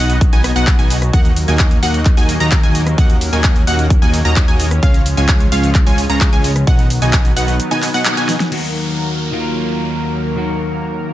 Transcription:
Already playing: analog synth pad F#3 B3 D#4
0.00 analog synth bass B1, supersaw synth B3 D#4 F#4 D#5 F#5, synth pluck F#5
0.10 closed hi-hat, shaker
0.21 kick, closed hi-hat, shaker
0.33 analog synth bass B1, supersaw synth B3 D#4 F#4 D#5 G#5, synth pluck G#5, closed hi-hat, shaker
0.44 cross-stick, open hi-hat, shaker
0.56 analog synth bass B1, supersaw synth B3 D#4 F#4 D#5 F#5, synth pluck F#5, closed hi-hat, shaker
0.67 kick, clap, closed hi-hat, shaker
0.79 analog synth bass B1, supersaw synth B3 D#4 F#4 D#5 G#5, synth pluck G#5, closed hi-hat, shaker
0.90 open hi-hat, shaker
1.02 cross-stick, closed hi-hat, shaker
1.13 analog synth bass D#2, supersaw synth A#3 D#4 F#4 D#5 F#5, analog synth pad A#3 D#4, synth pluck F#5, kick, closed hi-hat, shaker
1.25 closed hi-hat, shaker
1.36 open hi-hat, shaker
1.48 analog synth bass D#2, supersaw synth A#3 D#4 F#4 D#5 G#5, synth pluck G#5, closed hi-hat, shaker
1.59 kick, clap, closed hi-hat, shaker
1.71 closed hi-hat, shaker
1.83 analog synth bass D#2, supersaw synth A#3 D#4 F#4 D#5 F#5, synth pluck F#5, open hi-hat, shaker
1.94 closed hi-hat, shaker
2.05 kick, clap, closed hi-hat, shaker
2.17 analog synth bass D#2, supersaw synth A#3 D#4 F#4 D#5 G#5, synth pluck G#5, open hi-hat, shaker
2.29 open hi-hat, shaker
2.40 analog synth bass D#2, supersaw synth A#3 D#4 F#4 D#5 A#5, synth pluck A#5, closed hi-hat, shaker
2.52 kick, clap, closed hi-hat, shaker
2.63 analog synth bass D#2, supersaw synth A#3 D#4 F#4 D#5 G#5, synth pluck G#5, closed hi-hat, shaker
2.75 open hi-hat, shaker
2.87 cross-stick, closed hi-hat, shaker
2.98 analog synth bass D#2, supersaw synth A#3 D#4 F#4 D#5 F#5, analog synth pad C#4, synth pluck F#5, kick, closed hi-hat, shaker
3.10 closed hi-hat, shaker
3.21 open hi-hat, shaker
3.33 analog synth bass D#2, supersaw synth A#3 D#4 F#4 D#5 G#5, synth pluck G#5, closed hi-hat, shaker
3.44 kick, clap, closed hi-hat, shaker
3.56 closed hi-hat, shaker
3.67 analog synth bass D#2, supersaw synth A#3 D#4 F#4 D#5 F#5, synth pluck F#5, open hi-hat, shaker
3.79 closed hi-hat, shaker
3.90 kick, closed hi-hat, shaker
4.02 analog synth bass D#2, supersaw synth A#3 D#4 F#4 D#5 G#5, synth pluck G#5, closed hi-hat, shaker
4.14 open hi-hat, shaker
4.25 analog synth bass D#2, supersaw synth A#3 D#4 F#4 D#5 A#5, synth pluck A#5, closed hi-hat, shaker
4.36 kick, clap, closed hi-hat, shaker
4.48 analog synth bass D#2, supersaw synth A#3 D#4 F#4 D#5 G#5, synth pluck G#5, closed hi-hat, shaker
4.60 open hi-hat, shaker
4.71 cross-stick, closed hi-hat, shaker
4.83 analog synth bass C#2, analog synth pad F3 G#3, supersaw synth G#3 C#4 F4 C#5 F5, synth pluck F5, kick, closed hi-hat, shaker
4.94 closed hi-hat, shaker
5.06 open hi-hat, shaker
5.17 analog synth bass C#2, supersaw synth G#3 C#4 F4 C#5 G#5, synth pluck G#5, closed hi-hat, shaker
5.29 kick, clap, closed hi-hat, shaker
5.40 closed hi-hat, shaker
5.52 analog synth bass C#2, supersaw synth G#3 C#4 F4 C#5 F5, synth pluck F5, open hi-hat, shaker
5.63 closed hi-hat, shaker
5.75 kick, clap, closed hi-hat, shaker
5.87 analog synth bass C#2, supersaw synth G#3 C#4 F4 C#5 G#5, synth pluck G#5, open hi-hat, shaker
5.98 open hi-hat, shaker
6.10 analog synth bass C#2, supersaw synth G#3 C#4 F4 C#5 A#5, synth pluck A#5, closed hi-hat, shaker
6.21 kick, clap, closed hi-hat, shaker
6.33 analog synth bass C#2, supersaw synth G#3 C#4 F4 C#5 G#5, synth pluck G#5, closed hi-hat, shaker
6.44 open hi-hat, shaker
6.56 cross-stick, closed hi-hat, shaker
6.67 analog synth bass B1, analog synth pad D#3 F#3 B3, supersaw synth B3 D#4 F#4 D#5 F#5, synth pluck F#5, kick, closed hi-hat, shaker
6.79 closed hi-hat, shaker
6.90 open hi-hat, shaker
7.02 analog synth bass B1, supersaw synth B3 D#4 F#4 D#5 G#5, synth pluck G#5, closed hi-hat, shaker
7.13 kick, clap, closed hi-hat, shaker
7.25 closed hi-hat, shaker
7.37 analog synth bass B1, supersaw synth B3 D#4 F#4 D#5 F#5, synth pluck F#5, open hi-hat, shaker
7.48 closed hi-hat, shaker
7.60 closed hi-hat, shaker
7.71 supersaw synth B3 D#4 F#4 D#5 G#5, synth pluck G#5, closed hi-hat, shaker
7.82 clap, open hi-hat, shaker
7.94 supersaw synth B3 D#4 F#4 D#5 F#5, synth pluck F#5, open hi-hat, shaker
8.05 clap, closed hi-hat, shaker
8.17 supersaw synth B3 D#4 F#4 D#5 G#5, synth pluck G#5, closed hi-hat, shaker
8.29 snare, open hi-hat, shaker
8.40 snare, closed hi-hat, shaker
8.51 analog synth pad D#2 D#3 F#3 A#3 A#4, clean electric guitar D#3 F#3 A#3 F#4, crash, downlifter
9.32 clean electric guitar D#3 F#3 A#3 F4
10.35 clean electric guitar D#3 F#3 A#3 F#4

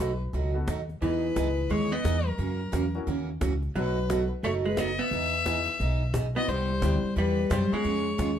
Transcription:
Already playing: hollow-body jazz guitar F#3, fiddle B4
0.00 upright bass B1, steel-string acoustic guitar B2 F#3 A3 D#4 F#4
0.33 upright bass C#2, steel-string acoustic guitar B2 F#3 A3 D#4 F#4, cajon bass, cajon slap
0.54 upright piano B3 D#4 F#4 A4
0.67 upright bass D#2, steel-string acoustic guitar B2 F#3 A3 D#4 F#4, cajon bass, cajon slap
0.89 cajon slap
1.01 upright bass E2, steel-string acoustic guitar E3 B3 D#4 G#4, hollow-body jazz guitar E3, upright piano B3 D#4 E4 G#4, fiddle B4, cajon bass, cajon slap
1.36 upright bass C#2, steel-string acoustic guitar E3 B3 D#4 G#4, cajon bass, cajon slap
1.69 upright bass D#2, steel-string acoustic guitar E3 B3 D#4 G#4, hollow-body jazz guitar G#3, fiddle C#5, cajon bass, cajon slap
1.92 hollow-body jazz guitar B3, fiddle D#5
2.04 upright bass E2, steel-string acoustic guitar E3 B3 D#4 G#4, cajon bass, cajon slap
2.27 hollow-body jazz guitar F#3, fiddle A#4
2.38 upright bass F#2, steel-string acoustic guitar C#3 E3 A#3 C#4 F#4, cajon bass, cajon slap
2.72 upright bass E2, steel-string acoustic guitar C#3 E3 A#3 C#4 F#4, cajon bass, cajon slap
2.94 upright piano C#4 E4 F#4 A#4, cajon slap
3.07 upright bass D#2, steel-string acoustic guitar C#3 E3 A#3 C#4 F#4, cajon bass, cajon slap
3.41 upright bass C#2, steel-string acoustic guitar C#3 E3 A#3 C#4 F#4, cajon bass, cajon slap
3.62 cajon slap
3.75 upright bass B1, steel-string acoustic guitar B2 F#3 A3 D#4 F#4, hollow-body jazz guitar F#3, upright piano B3 D#4 F#4 A4, fiddle B4, cajon bass, cajon slap
4.09 steel-string acoustic guitar B2 F#3 A3 D#4 F#4, upright piano B3 D#4 F#4 A4, cajon bass, cajon slap
4.43 upright bass F#1, steel-string acoustic guitar B2 F#3 A3 D#4 F#4, hollow-body jazz guitar A3, fiddle C#5, cajon bass, cajon slap
4.65 hollow-body jazz guitar G#3, fiddle B4, cajon slap
4.77 steel-string acoustic guitar B2 F#3 A3 D#4 F#4, hollow-body jazz guitar B3, fiddle D#5, cajon bass, cajon slap
4.99 hollow-body jazz guitar B3, fiddle E5, cajon slap
5.11 upright bass E2, steel-string acoustic guitar E3 B3 D#4 G#4, cajon bass, cajon slap
5.45 steel-string acoustic guitar E3 B3 D#4 G#4, upright piano B3 D#4 E4 G#4, cajon bass, cajon slap
5.68 cajon slap
5.80 upright bass B1, steel-string acoustic guitar E3 B3 D#4 G#4, cajon bass, cajon slap
6.14 steel-string acoustic guitar E3 B3 D#4 G#4, cajon bass, cajon slap
6.35 upright piano B3 C4 E4 F#4, hollow-body jazz guitar B3, fiddle D#5, cajon slap
6.48 upright bass C2, steel-string acoustic guitar C3 G3 B3 E4 G4, hollow-body jazz guitar G3, fiddle C5, cajon bass, cajon slap
6.82 upright bass D2, steel-string acoustic guitar C3 G3 B3 E4 G4, upright piano G3 B3 C4 E4 G4, cajon bass, cajon slap
7.04 muted upright bass stroke
7.16 upright bass E2, steel-string acoustic guitar C3 G3 B3 E4 G4, hollow-body jazz guitar G3, fiddle B4, cajon bass, cajon slap
7.50 upright bass F#2, steel-string acoustic guitar C3 G3 B3 E4 G4, hollow-body jazz guitar G3, fiddle C5, cajon bass, cajon slap
7.72 upright piano G#3 B3 C#4 F4 G#4, hollow-body jazz guitar G#3, fiddle C#5, muted upright bass stroke, cajon slap
7.84 upright bass F2, steel-string acoustic guitar C#3 G#3 B3 F4 G#4, cajon bass, cajon slap
8.18 upright bass D#2, steel-string acoustic guitar C#3 G#3 B3 F4 G#4, cajon bass, cajon slap

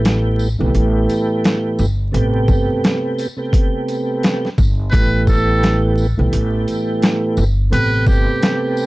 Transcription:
Already playing: upright bass A1, tonewheel organ A2 E3 A3 B3 G4
0.05 snare, closed hi-hat
0.39 tambourine
0.59 upright bass B1, tonewheel organ A2 E3 A3 B3 G4
0.75 upright bass A1, closed hi-hat
1.09 closed hi-hat, tambourine
1.44 snare, closed hi-hat
1.79 upright bass G1, tambourine
2.12 upright bass A1, tonewheel organ C3 A3 B3 G4, closed hi-hat
2.48 upright bass G1, kick, tambourine
2.84 snare, closed hi-hat
3.18 closed hi-hat, tambourine
3.37 tonewheel organ C3 A3 B3 G4
3.53 kick, closed hi-hat
3.88 closed hi-hat, tambourine
4.23 snare, closed hi-hat
4.45 snare
4.58 upright bass G1, kick, tambourine
4.91 upright bass A1, tonewheel organ A2 E3 A3 B3 G4, muted trumpet B4, kick, closed hi-hat
5.27 muted trumpet A4, kick, tambourine
5.63 snare, closed hi-hat
5.98 tambourine
6.17 upright bass B1, tonewheel organ A2 E3 A3 B3 G4
6.33 upright bass A1, closed hi-hat
6.68 closed hi-hat, tambourine
7.02 snare, closed hi-hat
7.37 upright bass G1, tambourine
7.70 upright bass A1, tonewheel organ C3 A3 B3 G4, muted trumpet B4, closed hi-hat
8.06 upright bass G1, muted trumpet G4, kick, tambourine
8.42 snare, closed hi-hat
8.77 tambourine

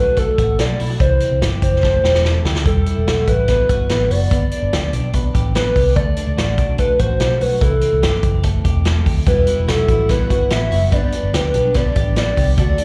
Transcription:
Already playing: picked electric bass B1, clean electric guitar A3 D4 F#4, soft synth lead B4
0.17 clean electric guitar A3, soft synth lead A4, kick, closed hi-hat
0.38 picked electric bass A1, clean electric guitar F#4, kick, closed hi-hat
0.59 picked electric bass B1, clean electric guitar A3, soft synth lead D5, snare, closed hi-hat
0.80 picked electric bass B1, clean electric guitar E4, open hi-hat
0.90 clean electric guitar F#4
1.00 picked electric bass C2, clean electric guitar E3, soft synth lead C5, kick, closed hi-hat
1.20 clean electric guitar C4, closed hi-hat
1.31 picked electric bass C2
1.42 picked electric bass G1, clean electric guitar G4, snare, closed hi-hat
1.62 picked electric bass F#1, clean electric guitar C4, soft synth lead C5, kick, closed hi-hat
1.83 clean electric guitar A3, kick, snare
2.04 picked electric bass E1, clean electric guitar G4, snare
2.15 snare
2.24 clean electric guitar A3, snare
2.45 picked electric bass D2, clean electric guitar G4, snare
2.56 snare
2.66 picked electric bass E1, clean electric guitar G3, soft synth lead A4, kick, closed hi-hat
2.86 clean electric guitar E4, closed hi-hat
2.97 picked electric bass E1
3.07 picked electric bass B1, clean electric guitar F#4, snare, closed hi-hat
3.27 picked electric bass A1, clean electric guitar E4, soft synth lead B4, kick, closed hi-hat
3.48 clean electric guitar B3, soft synth lead B4, kick, snare, closed hi-hat
3.69 picked electric bass G1, clean electric guitar F#4, kick, closed hi-hat
3.89 picked electric bass A1, clean electric guitar B3, snare, closed hi-hat
4.10 picked electric bass F#1, clean electric guitar F#4, soft synth lead D5, open hi-hat
4.31 picked electric bass G1, clean electric guitar B3, kick, closed hi-hat
4.51 clean electric guitar D4, closed hi-hat
4.63 picked electric bass G1
4.73 picked electric bass D2, clean electric guitar G4, snare, closed hi-hat
4.93 picked electric bass B1, clean electric guitar D4, closed hi-hat
5.13 clean electric guitar B3, kick, closed hi-hat
5.34 picked electric bass A1, clean electric guitar G4, kick, closed hi-hat
5.55 clean electric guitar B3, soft synth lead B4, snare, closed hi-hat
5.76 picked electric bass C2, clean electric guitar G4, kick, open hi-hat
5.96 picked electric bass D2, clean electric guitar A3, soft synth lead D5, kick, closed hi-hat
6.17 clean electric guitar D4, soft synth lead D5, closed hi-hat
6.27 picked electric bass D2
6.37 picked electric bass A1, clean electric guitar F#4, snare, closed hi-hat
6.58 picked electric bass B1, clean electric guitar D4, kick, closed hi-hat
6.78 clean electric guitar A3, soft synth lead B4, kick, closed hi-hat
6.99 picked electric bass A1, clean electric guitar F#4, soft synth lead C5, kick, closed hi-hat
7.20 picked electric bass B1, clean electric guitar A3, snare, closed hi-hat
7.41 picked electric bass B1, clean electric guitar F#4, soft synth lead B4, open hi-hat
7.61 picked electric bass C2, clean electric guitar E3, soft synth lead A4, kick, closed hi-hat
7.81 clean electric guitar C4, closed hi-hat
7.93 picked electric bass C2
8.03 picked electric bass G1, clean electric guitar G4, snare, closed hi-hat
8.23 picked electric bass F#1, clean electric guitar C4, kick, closed hi-hat
8.43 clean electric guitar A3, kick, closed hi-hat
8.64 picked electric bass E1, clean electric guitar G4, kick, closed hi-hat
8.85 clean electric guitar A3, snare, closed hi-hat
9.06 picked electric bass D2, clean electric guitar G4, kick, open hi-hat
9.26 picked electric bass E1, twelve-string acoustic guitar E2 B2 G3 B3 E4 F#4, clean electric guitar G3, soft synth lead B4, kick, closed hi-hat
9.46 twelve-string acoustic guitar G3 B3 E4 F#4, clean electric guitar E4, closed hi-hat
9.58 picked electric bass E1
9.67 picked electric bass B1, twelve-string acoustic guitar G3 B3 E4 F#4, clean electric guitar F#4, soft synth lead A4, snare, closed hi-hat
9.88 picked electric bass A1, twelve-string acoustic guitar G3 B3 E4 F#4, clean electric guitar E4, kick, closed hi-hat
10.09 twelve-string acoustic guitar E2 B2 G3 B3 E4 F#4, clean electric guitar B3, soft synth lead B4, kick, snare, closed hi-hat
10.29 picked electric bass G1, twelve-string acoustic guitar G3 B3 E4 F#4, clean electric guitar F#4, kick, closed hi-hat
10.50 picked electric bass A1, twelve-string acoustic guitar G3 B3 E4 F#4, clean electric guitar B3, soft synth lead E5, snare, closed hi-hat
10.71 picked electric bass F#1, twelve-string acoustic guitar G3 B3 E4 F#4, clean electric guitar F#4, open hi-hat
10.92 picked electric bass G1, twelve-string acoustic guitar G2 D3 G3 B3 D4 G4, clean electric guitar B3, soft synth lead D5, kick, closed hi-hat
11.12 twelve-string acoustic guitar G3 B3 D4 G4, clean electric guitar D4, closed hi-hat
11.23 picked electric bass G1
11.33 picked electric bass D2, twelve-string acoustic guitar G3 B3 D4 G4, clean electric guitar G4, soft synth lead B4, snare, closed hi-hat
11.54 picked electric bass B1, twelve-string acoustic guitar G3 B3 D4 G4, clean electric guitar D4, closed hi-hat
11.74 twelve-string acoustic guitar G2 D3 G3 B3 D4 G4, clean electric guitar B3, soft synth lead D5, kick, snare, closed hi-hat
11.95 picked electric bass A1, twelve-string acoustic guitar G3 B3 D4 G4, clean electric guitar G4, kick, closed hi-hat
12.15 twelve-string acoustic guitar G3 B3 D4 G4, clean electric guitar B3, soft synth lead D5, snare, closed hi-hat
12.36 picked electric bass C2, twelve-string acoustic guitar G3 B3 D4 G4, clean electric guitar G4, kick, open hi-hat
12.57 picked electric bass D2, twelve-string acoustic guitar D3 F#3 A3 D4 F#4, clean electric guitar A3, soft synth lead D5, kick, closed hi-hat
12.78 twelve-string acoustic guitar A3 D4 F#4, clean electric guitar D4, closed hi-hat

